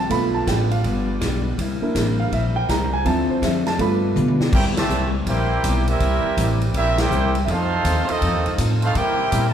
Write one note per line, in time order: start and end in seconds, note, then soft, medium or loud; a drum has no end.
0.00 1.54 F4 medium
0.09 0.46 B1 loud
0.09 0.35 G2 medium
0.09 0.36 F3 medium
0.09 1.53 A3 medium
0.09 1.56 B3 medium
0.09 1.54 B3 soft
0.09 0.36 B3 medium
0.09 1.54 F4 medium
0.09 2.89 G4 medium
0.09 1.56 D5 medium
0.09 0.34 B5 medium
0.09 kick soft
0.09 ride medium
0.14 0.37 D4 medium
0.34 0.47 A5 medium
0.47 0.83 A1 loud
0.47 0.72 G2 medium
0.47 0.73 F3 medium
0.47 0.73 B3 medium
0.47 0.74 D4 medium
0.47 0.71 G5 medium
0.47 kick soft
0.47 snare medium
0.47 hi-hat pedal medium
0.47 ride medium
0.71 1.54 F5 medium
0.71 ride soft
0.84 1.20 G1 medium
0.84 1.09 G2 medium
0.84 1.10 F3 medium
0.84 1.10 B3 medium
0.84 1.11 D4 soft
0.84 kick soft
0.84 ride medium
1.21 1.57 B1 loud
1.21 1.46 G2 medium
1.21 1.47 F3 medium
1.21 1.47 B3 medium
1.21 1.47 D4 medium
1.21 kick soft
1.21 snare medium
1.21 hi-hat pedal medium
1.21 ride medium
1.58 1.80 C2 loud
1.58 1.83 C3 medium
1.58 1.84 G3 medium
1.58 2.89 A#3 medium
1.58 1.84 A#3 medium
1.58 2.89 E4 medium
1.58 1.85 E4 medium
1.58 3.77 C5 medium
1.58 kick soft
1.58 ride medium
1.82 2.29 A#3 soft
1.82 2.29 D4 soft
1.82 2.30 E4 medium
1.82 muted upright bass stroke soft
1.95 2.31 A1 loud
1.95 2.20 C3 medium
1.95 2.20 G3 medium
1.95 2.21 A#3 medium
1.95 2.21 E4 medium
1.95 kick soft
1.95 snare medium
1.95 hi-hat pedal medium
1.95 ride medium
2.20 2.32 F5 medium
2.31 2.67 A#1 medium
2.31 2.57 C3 soft
2.31 2.57 G3 medium
2.31 2.58 A#3 medium
2.31 2.59 E4 medium
2.31 2.56 E5 medium
2.31 kick soft
2.31 ride medium
2.56 2.68 G5 medium
2.69 3.04 C2 loud
2.69 2.94 C3 medium
2.69 2.95 G3 medium
2.69 2.95 A#3 medium
2.69 2.95 E4 medium
2.69 2.92 A#5 medium
2.69 kick soft
2.69 snare medium
2.69 hi-hat pedal medium
2.69 ride medium
2.93 3.05 G#5 medium
3.05 3.28 D2 medium
3.05 3.30 D3 medium
3.05 3.63 F3 medium
3.05 4.52 F3 medium
3.05 3.79 A3 medium
3.05 3.63 C4 soft
3.05 3.31 C4 medium
3.05 4.51 D4 medium
3.05 3.64 E4 medium
3.05 3.31 F4 medium
3.05 3.32 A4 medium
3.05 3.29 A5 medium
3.05 kick soft
3.05 ride medium
3.29 3.42 C5 medium
3.29 muted upright bass stroke soft
3.42 3.78 F2 loud
3.42 3.67 D3 medium
3.42 3.68 C4 medium
3.42 3.68 F4 medium
3.42 3.68 A4 medium
3.42 3.66 E5 medium
3.42 kick soft
3.42 snare medium
3.42 hi-hat pedal medium
3.42 ride medium
3.66 3.79 A5 medium
3.66 snare medium
3.66 ride soft
3.78 4.15 G2 medium
3.78 4.04 G3 medium
3.78 4.52 G3 medium
3.78 4.37 A3 medium
3.78 4.37 B3 soft
3.78 4.05 D4 medium
3.78 4.37 F4 medium
3.78 4.05 F4 medium
3.78 4.52 B4 medium
3.78 4.06 B4 medium
3.78 4.14 B5 medium
3.78 kick soft
3.78 ride medium
4.16 4.52 B2 loud
4.16 4.41 G3 medium
4.16 4.42 D4 medium
4.16 4.42 F4 medium
4.16 4.42 B4 medium
4.16 hi-hat pedal medium
4.16 mid tom medium
4.28 mid tom medium
4.40 snare medium
4.51 4.65 G2 loud
4.51 4.78 C3 medium
4.51 7.45 E3 medium
4.51 4.78 G3 soft
4.51 7.45 G3 medium
4.51 4.62 A#3 medium
4.51 4.79 A#3 medium
4.51 7.45 C4 medium
4.51 4.63 E4 medium
4.51 4.64 E4 medium
4.51 4.62 G4 medium
4.51 7.45 G4 medium
4.51 4.65 A#4 medium
4.51 4.65 C5 medium
4.51 4.65 G5 loud
4.51 kick medium
4.51 crash loud
4.56 4.79 E4 medium
4.65 4.77 E2 medium
4.75 4.89 C2 medium
4.75 5.10 A#2 medium
4.75 5.10 E3 medium
4.75 5.10 A3 medium
4.75 5.12 G4 medium
4.75 5.12 C5 medium
4.75 5.12 E5 medium
4.75 5.12 A5 loud
4.75 snare loud
4.75 ride medium
4.89 5.25 C2 loud
4.89 5.14 C3 medium
4.89 5.15 G3 medium
4.89 5.15 A#3 medium
4.89 5.16 E4 medium
4.89 hi-hat pedal medium
5.26 5.62 A#1 medium
5.26 5.51 C3 soft
5.26 5.52 G3 medium
5.26 5.83 A#3 medium
5.26 5.53 A#3 medium
5.26 5.83 E4 medium
5.26 5.84 E4 medium
5.26 5.53 E4 medium
5.26 5.83 G4 medium
5.26 5.84 A#4 medium
5.26 5.84 C5 medium
5.26 5.84 G5 loud
5.26 kick soft
5.26 ride medium
5.63 5.99 B1 loud
5.63 5.88 C3 medium
5.63 5.89 G3 medium
5.63 5.89 A#3 medium
5.63 5.89 E4 medium
5.63 kick soft
5.63 hi-hat pedal medium
5.63 ride medium
5.87 6.61 G3 medium
5.87 6.61 A#3 medium
5.87 6.62 C4 medium
5.87 6.61 E4 medium
5.87 6.62 G4 loud
5.87 6.62 A#4 medium
5.87 6.62 E5 loud
5.87 ride medium
6.00 6.22 C2 medium
6.00 6.25 C3 medium
6.00 6.26 G3 medium
6.00 6.27 A#3 medium
6.00 6.27 E4 medium
6.00 kick soft
6.00 ride medium
6.24 muted upright bass stroke soft
6.37 6.73 A1 loud
6.37 6.62 C3 medium
6.37 6.63 G3 medium
6.37 6.63 A#3 medium
6.37 6.64 E4 medium
6.37 kick soft
6.37 hi-hat pedal medium
6.37 ride medium
6.61 ride medium
6.74 7.10 A#1 medium
6.74 6.99 C3 medium
6.74 6.96 G3 medium
6.74 7.00 G3 medium
6.74 6.96 A#3 medium
6.74 7.00 A#3 medium
6.74 6.97 C4 medium
6.74 6.96 E4 medium
6.74 7.01 E4 medium
6.74 6.97 G4 medium
6.74 6.97 A#4 medium
6.74 6.98 E5 loud
6.74 kick soft
6.74 ride medium
6.98 7.35 A#3 medium
6.98 7.35 E4 loud
6.98 7.36 E4 loud
6.98 7.35 G4 loud
6.98 7.36 A#4 loud
6.98 7.36 C5 loud
6.98 7.36 G5 loud
6.98 snare medium
6.98 ride medium
7.10 7.46 C2 loud
7.10 7.36 C3 medium
7.10 7.36 G3 medium
7.10 7.36 A#3 medium
7.10 7.37 E4 medium
7.10 hi-hat pedal medium
7.35 ride medium
7.45 7.83 F2 medium
7.45 8.94 D#3 medium
7.45 7.73 F3 medium
7.45 8.94 A3 medium
7.45 8.08 A3 loud
7.45 8.08 C4 medium
7.45 8.94 C4 medium
7.45 7.73 C4 medium
7.45 8.09 F4 medium
7.45 8.94 F4 medium
7.45 7.49 E5 medium
7.45 kick soft
7.45 ride medium
7.50 7.74 D#4 medium
7.50 8.10 D#4 loud
7.50 7.74 A4 medium
7.50 8.09 A4 loud
7.50 8.10 C5 loud
7.50 8.10 F5 loud
7.84 8.07 D#2 loud
7.84 8.10 F3 medium
7.84 8.10 C4 medium
7.84 8.11 D#4 medium
7.84 8.11 A4 medium
7.84 kick soft
7.84 hi-hat pedal medium
7.84 ride medium
8.09 8.53 A3 medium
8.09 8.53 C4 medium
8.09 8.53 D#4 loud
8.09 8.53 F4 medium
8.09 8.53 A4 medium
8.09 8.54 D#5 loud
8.09 muted upright bass stroke soft
8.09 ride medium
8.20 8.34 F2 loud
8.20 8.46 F3 soft
8.20 8.47 C4 medium
8.20 8.47 D#4 medium
8.20 8.48 A4 medium
8.20 kick soft
8.20 ride medium
8.34 8.46 D#2 medium
8.46 8.57 C2 medium
8.46 ride medium
8.58 8.94 A2 loud
8.58 8.84 F3 medium
8.58 8.84 C4 medium
8.58 8.84 D#4 medium
8.58 8.85 A4 medium
8.58 kick soft
8.58 hi-hat pedal medium
8.58 ride medium
8.82 8.94 A3 medium
8.82 8.94 C4 medium
8.82 8.95 D#4 medium
8.82 8.94 F4 medium
8.82 8.95 A4 medium
8.82 8.95 C5 medium
8.82 8.95 F5 loud
8.82 ride medium
8.94 9.20 C3 medium
8.94 9.31 C3 loud
8.94 9.53 C3 medium
8.94 9.53 G3 medium
8.94 9.21 G3 medium
8.94 9.47 A#3 medium
8.94 9.21 A#3 medium
8.94 9.47 E4 medium
8.94 9.53 E4 loud
8.94 9.48 E4 loud
8.94 9.22 E4 soft
8.94 9.47 G4 loud
8.94 9.53 A#4 medium
8.94 9.48 A#4 loud
8.94 9.48 C5 loud
8.94 9.48 G5 loud
8.94 kick soft
8.94 ride medium
9.32 9.53 A#2 loud
9.32 9.53 C3 medium
9.32 9.53 G3 medium
9.32 9.53 A#3 medium
9.32 9.53 E4 medium
9.32 kick soft
9.32 hi-hat pedal medium
9.32 ride medium
9.49 9.53 A5 medium